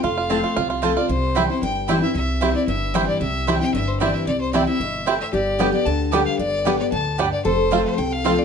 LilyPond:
<<
  \new Staff \with { instrumentName = "Fiddle" } { \time 4/4 \key c \major \tempo 4 = 226 f''2. r8 d''8 | c''4. c''8 g''4 r8 e''8 | e''4. d''8 e''4 c''8 d''8 | e''4. g''8 e''8 c''8 d''8 e''8 |
d''8 c''8 d''8 e''2 e''8 | d''4. d''8 a''4 r8 f''8 | d''4. d''8 a''4 r8 d''8 | c''4. c''8 g''8 f''4 d''8 | }
  \new Staff \with { instrumentName = "Mandolin" } { \time 4/4 \key c \major r4 <c' f' c'' a''>8 r4. <c' f' c'' a''>8 r8 | r4 <c' e' c'' g''>8 r4. <c' e' c'' g''>8 r8 | r4 <c' e' c'' g''>8 r4. <c' e' c'' g''>8 r8 | r4 <c' e' c'' g''>8 r4. <c' e' c'' g''>8 r8 |
r4 <c' e' c'' g''>8 r4. <c' e' c'' g''>8 r8 | r4 <b g' d'' g''>8 r4. <b g' d'' g''>8 r8 | r4 <b g' d'' g''>8 r4. <b g' d'' g''>8 r8 | r4 <c' f' c'' a''>8 r4. <c' f' c'' a''>8 r8 | }
  \new Staff \with { instrumentName = "Resonator guitar played with a steel bar" } { \time 4/4 \key c \major a'4 f'2~ f'8 r8 | r1 | r1 | r1 |
r1 | g'1~ | g'1 | a'2. f'4 | }
  \new Staff \with { instrumentName = "Five-string banjo" } { \time 4/4 \key c \major f'8 f'8 c'8 f'8 f'8 f'8 f'8 f'8 | r4 <c' e' g'>8 r4. <c' e' g'>8 r8 | r4 <c' e' g'>8 r4. <c' e' g'>8 r8 | r4 <c' e' g'>8 r4. <c' e' g'>8 r8 |
r4 <c' e' g'>8 r4. <c' e' g'>8 r8 | r4 <b d' g'>8 r4. <b d' g'>8 r8 | r4 <b d' g'>8 r4. <b d' g'>8 r8 | r4 <c' f'>8 r4. <c' f'>8 r8 | }
  \new Staff \with { instrumentName = "Steel-string acoustic guitar" } { \time 4/4 \key c \major << { r4 <f a c' f'>4 r4 <f a c' f'>8 <c' f'>8 | r4 <e g c' e'>8 <c' e'>8 r4 <e g c' e'>8 <c' e'>8 | r4 <e g c' e'>8 <c' e'>8 r4 <e g c' e'>4 | r4 <e g c' e'>8 <c' e'>8 r4 <e g c' e'>4 |
r4 <e g c' e'>8 <c' e'>8 r2 | r4 <d g b g'>8 <b g'>8 r4 <d g b g'>4 | r4 <d g b g'>8 <b g'>8 r2 | r4 <f a c' f'>4 r4 <f a c' f'>4 | } \\ { f,2 c2 | c2 g,2 | c2 g,2 | c2 g,2 |
c2 b,4 a,4 | g,2 d2 | g,2 a,4 g,4 | f,2 c2 | } >> }
  \new Staff \with { instrumentName = "Upright bass" } { \clef bass \time 4/4 \key c \major f,,2 c,2 | c,2 g,,2 | c,2 g,,2 | c,2 g,,2 |
c,2 g,,2 | g,,2 d,2 | g,,2 d,2 | f,,2 c,2 | }
>>